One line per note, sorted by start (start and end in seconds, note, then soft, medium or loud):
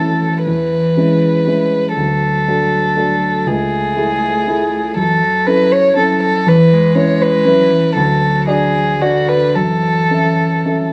0.00 0.48 F#2 soft
0.00 1.92 E3 soft
0.00 0.49 A3 soft
0.00 0.49 C#4 soft
0.00 0.48 E4 soft
0.00 0.43 A4 soft
0.46 0.95 E2 soft
0.46 1.93 B4 soft
0.97 1.43 G#3 soft
0.97 1.43 C#4 soft
0.97 1.43 E4 soft
1.46 1.93 G#3 soft
1.46 1.93 C#4 soft
1.46 1.93 E4 soft
1.96 2.45 D2 soft
1.96 3.49 F#3 soft
1.96 3.48 A4 soft
2.48 2.93 A3 soft
2.48 2.93 D4 soft
2.48 2.93 F#4 soft
2.96 3.43 A3 soft
2.96 3.43 D4 soft
2.96 3.43 F#4 soft
3.46 3.95 C#2 medium
3.46 4.96 A3 soft
3.46 4.96 G#4 soft
3.96 4.42 A3 soft
3.96 4.42 E4 soft
3.96 4.43 G#4 soft
4.47 4.92 A3 soft
4.47 4.93 E4 soft
4.47 4.93 G#4 soft
4.96 5.45 F#2 medium
4.96 5.22 E3 medium
4.96 5.48 A4 soft
5.21 5.96 F#3 medium
5.47 5.93 C#4 soft
5.47 5.93 E4 soft
5.47 5.93 A4 soft
5.47 5.74 B4 medium
5.72 5.97 C#5 medium
5.96 6.48 F#3 medium
5.96 6.42 C#4 soft
5.96 6.43 E4 soft
5.96 6.43 A4 soft
5.96 6.21 A4 medium
6.23 6.50 A4 medium
6.46 6.95 E2 medium
6.46 6.73 E3 medium
6.46 6.97 B4 medium
6.72 7.47 G#3 medium
6.95 7.42 C#4 soft
6.95 7.42 E4 soft
6.95 7.42 B4 medium
6.95 7.23 C#5 medium
7.22 7.95 B4 medium
7.45 7.73 F#3 medium
7.45 7.92 C#4 soft
7.45 7.93 E4 soft
7.45 7.93 B4 medium
7.71 7.96 E3 medium
7.96 8.47 D2 medium
7.96 9.00 F#3 medium
7.96 8.47 A4 medium
8.47 8.97 D4 soft
8.47 8.98 F#4 soft
8.47 9.03 G#4 medium
8.47 8.98 D5 soft
9.01 9.57 D3 soft
9.01 9.52 D4 soft
9.01 9.52 F#4 soft
9.01 9.30 F#4 medium
9.01 9.52 D5 soft
9.28 9.56 B4 medium
9.55 10.09 F#2 medium
9.55 10.93 E3 medium
9.55 10.93 A4 medium
10.11 10.62 C#4 soft
10.11 10.62 A4 soft
10.11 10.62 E5 soft
10.65 10.93 C#4 soft
10.65 10.93 A4 soft
10.65 10.93 E5 soft